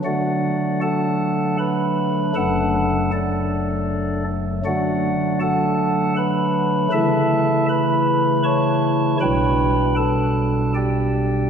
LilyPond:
<<
  \new Staff \with { instrumentName = "Pipe organ" } { \time 3/4 \key d \major \tempo 4 = 79 <fis' d'' fis''>4 <a' fis'' a''>4 <b' b''>4 | <a' fis'' a''>4 <d' a' d''>4. r8 | <fis' d'' fis''>4 <a' fis'' a''>4 <b' b''>4 | <a' e'' a''>4 <b' b''>4 <cis'' a'' cis'''>4 |
<b' g'' b''>4 <a' a''>4 <g' d'' g''>4 | }
  \new Staff \with { instrumentName = "Pipe organ" } { \clef bass \time 3/4 \key d \major <d fis a d'>2. | <fis,, fis, fis a d'>2. | <d fis a d'>2. | <cis e a e'>2. |
<b,, b, g d'>2. | }
>>